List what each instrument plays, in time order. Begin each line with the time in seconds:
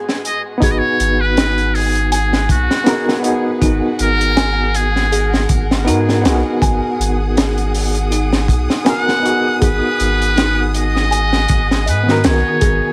Already playing: reed electric piano G#2 B3 D#4 F#4 G#4, violin section G#3 B3 F#4, music box G#4
0.09 snare
0.25 muted trumpet D#5, closed hi-hat
0.58 reed electric piano B3 D#4, violin section F#5
0.62 sub bass G#1, reed electric piano F#4, violin section G#4, music box G#4, muted trumpet C#5, kick, closed hi-hat
0.66 reed electric piano B4
0.71 muted trumpet D#5
0.78 muted trumpet C#5
0.99 sub bass G#1, closed hi-hat
1.21 muted trumpet B4
1.37 music box D#4, snare, closed hi-hat
1.58 closed hi-hat
1.75 muted trumpet G#4, open hi-hat
1.95 closed hi-hat
2.12 muted trumpet G#4, music box G#5, closed hi-hat
2.33 snare
2.49 sub bass B1, muted trumpet F#4, kick, closed hi-hat
2.71 snare
2.84 reed electric piano B3 D#4 F#4, music box G#4, snare, closed hi-hat
2.88 reed electric piano A#4
3.09 snare
3.20 reed electric piano B3 D#4
3.24 reed electric piano F#4 G#4, closed hi-hat
3.61 sub bass G#1, music box D#4, kick, closed hi-hat
3.99 sub bass G#1, muted trumpet A#4, closed hi-hat
4.21 closed hi-hat
4.37 music box G#5, snare, closed hi-hat
4.74 muted trumpet G#4, closed hi-hat
4.96 snare
5.12 music box G#4, closed hi-hat
5.34 snare
5.49 sub bass G#1, kick, closed hi-hat
5.71 snare
5.85 sub bass G#2, reed electric piano B3 D#4 F#4, music box D#4, closed hi-hat
5.89 reed electric piano A#4
6.09 snare
6.21 sub bass B1, reed electric piano B3 D#4, closed hi-hat
6.26 reed electric piano F#4 G#4, snare
6.62 sub bass G#1, music box G#5, violin section D#6, kick, closed hi-hat
6.99 sub bass G#1, closed hi-hat
7.37 music box G#4, snare, closed hi-hat
7.58 closed hi-hat
7.74 open hi-hat
7.95 closed hi-hat
8.11 music box D#4, closed hi-hat
8.33 snare
8.48 sub bass B1, kick, closed hi-hat
8.70 snare
8.85 reed electric piano B3 D#4 F#4, music box G#5, snare, closed hi-hat
8.89 reed electric piano A#4, muted trumpet F#5
9.08 snare
9.20 reed electric piano B3 D#4
9.25 reed electric piano F#4 G#4, closed hi-hat
9.61 sub bass G#1, music box G#4, muted trumpet B4, kick, closed hi-hat
10.00 sub bass G#1, closed hi-hat
10.22 closed hi-hat
10.36 music box D#4, snare, closed hi-hat
10.74 muted trumpet D#5, closed hi-hat
10.96 snare
11.11 music box G#5, closed hi-hat
11.33 snare
11.48 sub bass G#1, kick, closed hi-hat
11.71 snare
11.86 sub bass G#2, muted trumpet B4, music box D#5, closed hi-hat
12.03 reed electric piano D#3 B3
12.08 reed electric piano F#4 A#4, snare
12.24 sub bass B1, muted trumpet C#5, snare, closed hi-hat
12.61 sub bass G#1, music box G#4, violin section G#5, kick, closed hi-hat